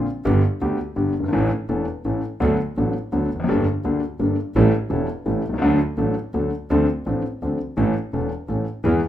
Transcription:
0.25 grand piano G1 G2 D3 G3 B3 G4, double bass G1
0.61 double bass D2, grand piano D2 D3 G3 B3 G4
0.96 grand piano G1 G2 D3 G3 B3 G4, double bass G1
1.15 double bass G1
1.20 grand piano F#1 G1
1.28 grand piano G#1
1.33 double bass A1, grand piano A1 A2 E3 A3 C#4 A4
1.69 grand piano E1 E2 E3 A3 C#4 A4, double bass E1
2.05 grand piano A1 A2 E3 A3 C#4 A4, double bass A1
2.40 grand piano D2 D3 F#3 B3 D4 A4, double bass D2
2.77 double bass A1, grand piano A1 A2 F#3 B3 D4 A4
3.12 grand piano D2 D3 F#3 B3 D4 A4, double bass D2
3.31 double bass F1
3.35 grand piano E2
3.40 grand piano F2
3.44 grand piano F#2
3.48 double bass G1, grand piano G1 G2 G3 A#3 D4 A4
3.84 double bass D2, grand piano D2 D3 G3 A#3 D4 A4
4.19 grand piano G1 G2 G3 A#3 D4 A4, double bass G1
4.56 double bass A1, grand piano A1 A2 G3 C#4 E4 A4
4.90 grand piano E1 E2 G3 C#4 E4 A4, double bass E1
5.26 grand piano A1 A2 G3 C#4 E4 A4, double bass A1
5.44 double bass C2
5.49 grand piano B1
5.54 grand piano C2
5.58 grand piano C#2 D2 D3 F#3 A3
5.62 double bass D2, grand piano D4 A4
5.98 grand piano A1 A2 F#3 A3 D4 A4, double bass A1
6.34 double bass D2, grand piano D2 D3 F#3 A3 D4 A4
6.70 grand piano D2 D3 F3 C4 D4 A4, double bass D2
7.06 double bass A1, grand piano A1 A2 F3 C4 D4 A4
7.42 double bass D2, grand piano D2 D3 F3 C4 D4 A4
7.77 grand piano A1 A2 E3 A3 C#4 A4, double bass A1
8.13 grand piano E1 E2 E3 A3 C#4 A4, double bass E1
8.48 grand piano A1 A2 E3 A3 C#4 A4, double bass A1
8.84 grand piano E2 E3 G#3 B3 G#4, double bass E2

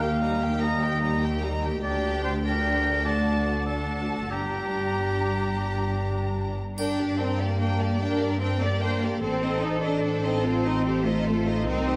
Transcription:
Already playing: double bass section D#2, cello section D#2
0.00 viola section A#3, violin section G4 G5, oboe F5
0.21 viola section G3, violin section D#4 A#5
0.41 viola section A#3, violin section G4 G5
0.61 viola section G3, violin section D#4 A#5, oboe D#5
0.81 viola section A#3, violin section G4 G5
1.02 viola section G3, violin section D#4 A#5
1.22 viola section A#3, violin section G4 G5
1.42 viola section G3, violin section D#4 A#5
1.63 viola section A#3, violin section G4 G5
1.83 double bass section D2, cello section D2, viola section D4, violin section G4 G5, oboe D5
2.24 oboe C5
2.44 viola section D4, violin section G4 G5, oboe A#4
3.05 viola section D4, violin section F#4 A5, oboe D5
3.67 viola section D4, violin section F#4 A5, oboe A4
4.30 double bass section G1, cello section G2, viola section D4, violin section G4 A#5, oboe G4
6.78 double bass section G2, cello section D4, violin section D4 A#4 G5, triangle
6.98 violin section G4 D5
7.18 cello section C4, violin section D4 A#4 G5
7.39 cello section A#3, violin section G4 D5
7.58 violin section D4 A#4 G5
7.79 violin section G4 D5
8.00 violin section D4 A#4 G5, cello section D4, viola section A#4
8.19 violin section G4 D5
8.40 cello section C4, violin section D4 A#4 G5
8.61 cello section A#3, violin section G4 D5, viola section D5
8.81 violin section D4 A#4 G5, viola section C5
9.02 violin section G4 D5, viola section A#4
9.22 double bass section A1, violin section C4 A4 C5, cello section C4, viola section A4
9.42 violin section D#4 C5 D#5
9.63 violin section C4 A4 C5, cello section D#4
9.83 cello section D4, violin section D#4 C5 D#5
10.04 violin section C4 A4 C5
10.24 cello section C4, violin section D#4 C5 D#5
10.44 cello section C4, violin section C4 A4 C5, viola section F4
10.64 viola section D#4, violin section D#4 C5 D#5
10.86 violin section C4 A4 C5, viola section G4
11.05 cello section A3, violin section D#4 C5 D#5, viola section F4
11.26 violin section C4 A4 C5
11.47 violin section D#4 C5 D#5
11.66 double bass section C2, cello section C4, viola section D#4, violin section D#4 A#4 C5
11.87 violin section G4 C5 D#5

